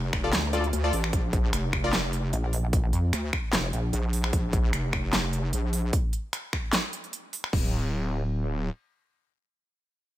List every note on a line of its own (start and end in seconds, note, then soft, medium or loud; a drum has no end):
0.00 0.12 F1 loud
0.13 0.32 F1 loud
0.13 finger snap medium
0.13 kick medium
0.24 0.29 F4 medium
0.24 0.29 A4 medium
0.24 0.29 D5 medium
0.33 0.72 D2 medium
0.33 snare loud
0.33 clap medium
0.33 closed hi-hat medium
0.53 0.63 F4 medium
0.53 0.63 A4 medium
0.53 0.63 D5 loud
0.53 closed hi-hat medium
0.64 closed hi-hat soft
0.73 0.92 D2 loud
0.73 closed hi-hat medium
0.84 0.92 F4 medium
0.84 0.92 A4 medium
0.84 0.92 D5 loud
0.93 1.12 A1 loud
0.93 open hi-hat medium
1.04 finger snap medium
1.13 1.52 A#1 loud
1.13 kick loud
1.13 closed hi-hat medium
1.33 kick loud
1.33 closed hi-hat soft
1.53 2.32 F1 loud
1.53 finger snap medium
1.53 closed hi-hat medium
1.73 finger snap medium
1.73 kick medium
1.84 1.92 F4 medium
1.84 1.92 A#4 medium
1.84 1.92 D5 loud
1.93 snare loud
1.93 clap medium
1.93 closed hi-hat medium
2.13 closed hi-hat medium
2.33 2.92 A#1 loud
2.33 closed hi-hat medium
2.53 open hi-hat medium
2.73 kick loud
2.73 closed hi-hat medium
2.93 3.12 F2 loud
2.93 closed hi-hat medium
3.13 3.32 D2 loud
3.13 finger snap medium
3.13 closed hi-hat medium
3.33 finger snap medium
3.33 kick medium
3.53 3.72 F1 loud
3.53 snare loud
3.53 clap medium
3.53 closed hi-hat medium
3.73 3.92 A#1 loud
3.73 closed hi-hat medium
3.93 4.32 A#1 loud
3.93 closed hi-hat medium
4.13 open hi-hat medium
4.24 finger snap medium
4.33 4.72 A#1 loud
4.33 kick loud
4.33 closed hi-hat medium
4.53 kick loud
4.53 closed hi-hat medium
4.73 5.52 F1 loud
4.73 finger snap medium
4.73 closed hi-hat medium
4.93 finger snap medium
4.93 kick medium
5.13 snare loud
5.13 clap medium
5.13 closed hi-hat medium
5.33 closed hi-hat medium
5.53 5.92 A#1 loud
5.53 closed hi-hat medium
5.73 open hi-hat loud
5.93 kick loud
5.93 closed hi-hat medium
6.13 closed hi-hat medium
6.33 finger snap medium
6.33 closed hi-hat medium
6.53 finger snap medium
6.53 kick medium
6.73 snare loud
6.73 clap medium
6.73 closed hi-hat medium
6.93 closed hi-hat medium
7.04 closed hi-hat soft
7.13 closed hi-hat medium
7.33 open hi-hat medium
7.44 finger snap medium
7.53 8.69 D1 loud
7.53 kick loud
7.53 crash medium